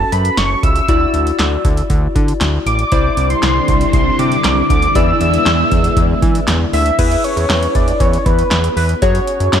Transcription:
Already playing: synth keys C#4 F#4 A4, analog synth lead A5
0.12 analog synth bass F#2, analog synth lead B5, closed hi-hat
0.25 closed hi-hat
0.37 analog synth bass F#1, analog synth lead C#6, snare, closed hi-hat
0.63 analog synth bass C#2, analog synth lead E6, kick, closed hi-hat
0.76 closed hi-hat
0.88 analog synth bass D2, synth keys E4 F#4 D5, kick, closed hi-hat
1.14 analog synth bass D2, closed hi-hat
1.27 closed hi-hat
1.39 analog synth bass D2, snare, clap, closed hi-hat
1.65 analog synth bass D2, kick, closed hi-hat
1.77 closed hi-hat
1.90 analog synth bass D2, kick, closed hi-hat
2.15 analog synth bass D3, kick, closed hi-hat
2.28 closed hi-hat
2.41 analog synth bass D2, snare, clap, closed hi-hat
2.66 analog synth bass A1, analog synth lead D6, closed hi-hat
2.79 closed hi-hat
2.92 analog synth bass C2, string machine D3 G3 C4 E4, synth keys E4 C5 D5, kick, closed hi-hat
3.17 analog synth bass C2, closed hi-hat
3.30 analog synth lead C6, closed hi-hat
3.43 analog synth bass C2, snare, clap, closed hi-hat
3.68 analog synth bass C2, kick, closed hi-hat
3.81 closed hi-hat
3.93 analog synth bass C2, analog synth lead C6, kick, closed hi-hat
4.19 analog synth bass C3, analog synth lead D6, closed hi-hat
4.32 closed hi-hat
4.44 analog synth bass C2, snare, clap, closed hi-hat
4.70 analog synth bass D2, analog synth lead D6, kick, closed hi-hat
4.82 closed hi-hat
4.95 analog synth bass E2, string machine G#3 B3 E4, synth keys E4 G#4 D5, analog synth lead E6, kick, closed hi-hat
5.21 analog synth bass E2, closed hi-hat
5.34 closed hi-hat
5.46 analog synth bass E2, snare, clap, closed hi-hat
5.72 analog synth bass E2, kick, closed hi-hat
5.84 closed hi-hat
5.97 analog synth bass E2, kick, closed hi-hat
6.22 analog synth bass E3, kick, closed hi-hat
6.35 closed hi-hat
6.48 analog synth bass E2, snare, clap, closed hi-hat
6.73 analog synth bass D2, analog synth lead E5, open hi-hat
6.86 closed hi-hat
6.99 analog synth bass E2, synth keys E4 G#4 B4, analog synth lead E5, kick, closed hi-hat, crash
7.11 closed hi-hat
7.24 analog synth lead C#5, closed hi-hat
7.37 analog synth bass E2, closed hi-hat
7.50 analog synth bass E2, snare, clap, closed hi-hat
7.63 closed hi-hat
7.75 analog synth bass E2, analog synth lead D5, kick, closed hi-hat
7.88 closed hi-hat
8.00 analog synth bass E2, analog synth lead C#5, kick, closed hi-hat
8.13 closed hi-hat
8.26 analog synth bass E2, analog synth lead B4, kick, closed hi-hat
8.39 closed hi-hat
8.51 analog synth bass E2, snare, clap, closed hi-hat
8.64 closed hi-hat
8.77 analog synth bass E2, analog synth lead B4, open hi-hat
8.89 closed hi-hat
9.02 analog synth bass F#2, synth keys F#4 G#4 C#5, analog synth lead C#5, kick, closed hi-hat
9.15 closed hi-hat
9.27 closed hi-hat
9.40 analog synth bass F#2, closed hi-hat
9.53 analog synth bass F#2, snare, clap, closed hi-hat

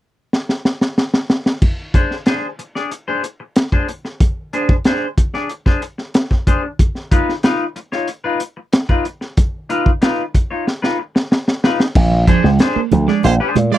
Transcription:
0.33 snare
0.49 snare
0.65 snare
0.81 snare
0.98 snare
1.14 snare
1.30 snare
1.46 snare
1.62 kick, crash
1.94 clean electric guitar D4 G#4 C5, kick, closed hi-hat
2.11 snare
2.26 clean electric guitar D4 G#4 C5, snare, closed hi-hat
2.59 muted clean electric guitar stroke, closed hi-hat
2.75 clean electric guitar D4 G#4 D5, snare
2.92 muted clean electric guitar stroke, closed hi-hat
3.08 clean electric guitar D4 G#4 C5
3.24 muted clean electric guitar stroke, closed hi-hat
3.40 muted clean electric guitar stroke
3.56 muted clean electric guitar stroke, snare, closed hi-hat
3.72 clean electric guitar D4 G#4 C5, kick
3.89 muted clean electric guitar stroke, closed hi-hat
4.05 muted clean electric guitar stroke, snare
4.20 kick, closed hi-hat
4.53 clean electric guitar D4 G#4 C5, closed hi-hat
4.69 kick
4.84 clean electric guitar D4 G#4 C5, snare, closed hi-hat
5.18 muted clean electric guitar stroke, kick, closed hi-hat
5.34 clean electric guitar D4 G#4 D5, snare
5.50 muted clean electric guitar stroke, closed hi-hat
5.66 clean electric guitar D4 G#4 C5, kick, snare
5.82 muted clean electric guitar stroke, closed hi-hat
5.98 muted clean electric guitar stroke, snare
6.14 muted clean electric guitar stroke, snare, closed hi-hat
6.31 muted clean electric guitar stroke, kick, snare
6.47 clean electric guitar D4 G#4 C5, kick, closed hi-hat
6.63 muted clean electric guitar stroke
6.79 kick, closed hi-hat
6.95 snare
7.11 clean electric guitar D#4 F4 B4, kick, closed hi-hat
7.29 snare
7.43 clean electric guitar D#4 F4 B4, snare, closed hi-hat
7.76 muted clean electric guitar stroke, closed hi-hat
7.92 clean electric guitar D#4 F4 C#5, snare
8.08 muted clean electric guitar stroke, closed hi-hat
8.24 clean electric guitar D#4 F4 B4
8.40 muted clean electric guitar stroke, closed hi-hat
8.57 muted clean electric guitar stroke
8.73 muted clean electric guitar stroke, snare, closed hi-hat
8.89 clean electric guitar D#4 F4 B4, kick
9.05 muted clean electric guitar stroke, closed hi-hat
9.21 muted clean electric guitar stroke, snare
9.37 kick, closed hi-hat
9.69 clean electric guitar D#4 F4 B4, closed hi-hat
9.86 kick
10.02 clean electric guitar D#4 F4 B4, snare, closed hi-hat
10.34 muted clean electric guitar stroke, kick, closed hi-hat
10.51 clean electric guitar D#4 F4 C#5
10.67 muted clean electric guitar stroke, snare
10.82 clean electric guitar D#4 F4 B4, snare
10.99 muted clean electric guitar stroke
11.15 muted clean electric guitar stroke, snare
11.31 muted clean electric guitar stroke, snare
11.48 muted clean electric guitar stroke, snare
11.64 clean electric guitar D#4 F4 B4, snare
11.80 muted clean electric guitar stroke, snare
11.95 slap bass A#1, kick, crash, low conga
12.12 muted clean electric guitar stroke
12.27 clean electric guitar F3 D4 G#4 C5, kick, closed hi-hat
12.44 slap bass C#2, clean electric guitar G#3, snare
12.59 clean electric guitar D4 G#4 C5, snare, closed hi-hat, muted conga
12.76 clean electric guitar A#3, muted slap bass stroke
12.91 slap bass D2, muted clean electric guitar stroke, closed hi-hat, low conga
13.08 clean electric guitar G#3 D4 G#4 D5, snare
13.23 slap bass A#1, horn section G#3 F4 C5, clean electric guitar A#3, muted clean electric guitar stroke, closed hi-hat, muted conga
13.40 clean electric guitar D4 G#4 C5
13.56 slap bass A#2, muted clean electric guitar stroke, closed hi-hat, high conga
13.71 horn section G#3 F4 D5, clean electric guitar G#3, muted clean electric guitar stroke

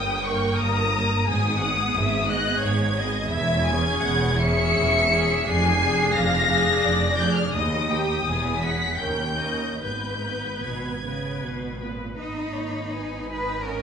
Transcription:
Already playing: double bass section G1, cello section G2, viola section A#3 A#4, violin section G5 D#6
0.23 viola section A#3 A#4, violin section C#6
0.57 cello section G2, violin section A#5 D#6
0.61 double bass section G1
0.92 viola section A#3 A#4
1.26 double bass section G#1, cello section G#2, viola section B3 G#4, violin section G#5 D#6
1.59 viola section B3 G#4, violin section F#5
1.95 double bass section G#1, cello section G#2, violin section E5
2.28 viola section B3 G#4, violin section D#5 F#6
2.61 double bass section G#1, cello section G#2, violin section C#5 G#6
2.96 viola section B3 G#4, violin section D#5
3.29 double bass section E1, cello section E2, violin section E5 G#6
3.65 viola section C#4 G#4, violin section G#5
4.00 double bass section E1, cello section E2, violin section F#5
4.40 viola section C#4 G#4, violin section E5 C#7
4.78 double bass section E1, cello section E2
5.11 viola section C#4 G#4
5.45 double bass section F1, cello section F2, viola section D4 G#4, violin section G#5 C7
5.80 viola section D4 G#4
6.13 double bass section F1, cello section F2, violin section F5 A#6
6.48 viola section D4 G#4
6.83 double bass section F1, cello section F2, violin section D5
7.17 viola section D4 G#4, violin section G6
7.34 violin section F6
7.53 cello section D#2, double bass section D#2, violin section D#5 D#6
7.90 viola section D#4 G4, violin section G5
8.26 double bass section E1, cello section E2, viola section B3 G#4, violin section G#5
8.61 viola section B3 G#4, violin section F#5 B6
9.00 double bass section D#2, cello section D#2, viola section C#4 A#4, violin section G5 G6
9.40 viola section C#4 A#4, violin section D#5
9.80 double bass section G#1, cello section G#2, viola section B3 B4, violin section B4 G6
10.23 viola section B3 B4
10.63 double bass section G#1, cello section B2, violin section G#6
11.03 cello section C#3, viola section B3 B4
11.42 double bass section G#1, cello section B2
11.82 cello section A#2, viola section B3 B4
12.19 double bass section G#1, viola section B3, cello section D#4, violin section D#5 B5
12.57 viola section A#3, violin section C#5
12.93 viola section B3, violin section B4 G#5
13.29 viola section D#4, cello section B4
13.63 viola section C#4, cello section A#4, violin section D#5 F#5 G#5

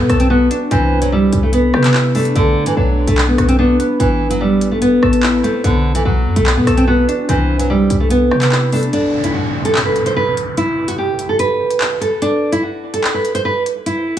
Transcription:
Already playing: harp B3 E4 F#4
0.00 nylon-string guitar B3
0.09 808-style bass B1, harp A4, cross-stick, closed hi-hat
0.20 nylon-string guitar C4, closed hi-hat
0.30 nylon-string guitar B3, harp F#4
0.51 harp D4, closed hi-hat
0.71 808-style bass C2, nylon-string guitar E3, harp C4, closed hi-hat
1.02 nylon-string guitar F#3, closed hi-hat
1.12 nylon-string guitar G3, harp E4
1.33 808-style bass C2, closed hi-hat
1.43 nylon-string guitar A3
1.53 nylon-string guitar B3, closed hi-hat
1.74 808-style bass C3, harp G4, cross-stick
1.84 clap, closed hi-hat
1.94 harp E4, clap
2.15 nylon-string guitar A3, harp D4, closed hi-hat, open hi-hat
2.25 closed hi-hat
2.36 808-style bass B1, nylon-string guitar D3, harp A3, closed hi-hat
2.66 nylon-string guitar E3, closed hi-hat
2.77 808-style bass B1, nylon-string guitar F#3, harp D4
3.07 808-style bass B1, nylon-string guitar A3, closed hi-hat
3.18 clap
3.28 nylon-string guitar B3
3.38 808-style bass B1, harp F#4, cross-stick, closed hi-hat
3.48 nylon-string guitar C4, closed hi-hat
3.59 nylon-string guitar B3, harp D4
3.69 808-style bass C2
3.79 harp B3, closed hi-hat
4.00 808-style bass A1, nylon-string guitar E3, harp B3, closed hi-hat
4.30 nylon-string guitar F#3, closed hi-hat
4.41 nylon-string guitar G3, harp E4
4.61 closed hi-hat
4.71 nylon-string guitar A3
4.82 nylon-string guitar B3, closed hi-hat
5.03 808-style bass A1, harp A4, cross-stick
5.13 closed hi-hat
5.23 harp E4, clap
5.43 nylon-string guitar A3, harp C4, closed hi-hat
5.64 808-style bass B1, nylon-string guitar D3, harp B3, closed hi-hat
5.95 nylon-string guitar E3, closed hi-hat
6.05 808-style bass B1, nylon-string guitar F#3, harp F#4
6.26 808-style bass F#2
6.36 808-style bass B1, nylon-string guitar A3, closed hi-hat
6.46 clap
6.57 808-style bass B2, nylon-string guitar B3
6.67 808-style bass B1, harp A4, cross-stick, closed hi-hat
6.77 nylon-string guitar C4, closed hi-hat
6.87 nylon-string guitar B3, harp F#4
7.08 harp D4, closed hi-hat
7.29 808-style bass C2, nylon-string guitar E3, harp C4, closed hi-hat
7.59 nylon-string guitar F#3, closed hi-hat
7.70 nylon-string guitar G3, harp E4
7.90 808-style bass C2, closed hi-hat
8.00 nylon-string guitar A3
8.10 nylon-string guitar B3, closed hi-hat
8.31 808-style bass C3, harp G4, cross-stick
8.42 clap, closed hi-hat
8.52 harp E4, clap
8.72 nylon-string guitar A3, harp D4, closed hi-hat, open hi-hat
8.83 closed hi-hat
8.93 nylon-string guitar D4, closed hi-hat, downlifter
9.24 nylon-string guitar E4, closed hi-hat
9.34 nylon-string guitar F#4
9.65 nylon-string guitar A4, closed hi-hat
9.75 clap
9.85 nylon-string guitar B4
9.96 closed hi-hat
10.06 nylon-string guitar C5, closed hi-hat
10.16 nylon-string guitar B4
10.37 closed hi-hat
10.57 nylon-string guitar E4, closed hi-hat
10.88 nylon-string guitar F#4, closed hi-hat
10.98 nylon-string guitar G4
11.19 closed hi-hat
11.29 nylon-string guitar A4
11.39 nylon-string guitar B4, closed hi-hat
11.70 closed hi-hat
11.81 clap
12.01 nylon-string guitar A4, closed hi-hat
12.22 nylon-string guitar D4, closed hi-hat
12.52 nylon-string guitar E4, closed hi-hat
12.63 nylon-string guitar F#4
12.94 nylon-string guitar A4, closed hi-hat
13.04 clap
13.14 nylon-string guitar B4
13.25 closed hi-hat
13.35 nylon-string guitar C5, closed hi-hat
13.45 nylon-string guitar B4
13.66 closed hi-hat
13.86 nylon-string guitar E4, closed hi-hat

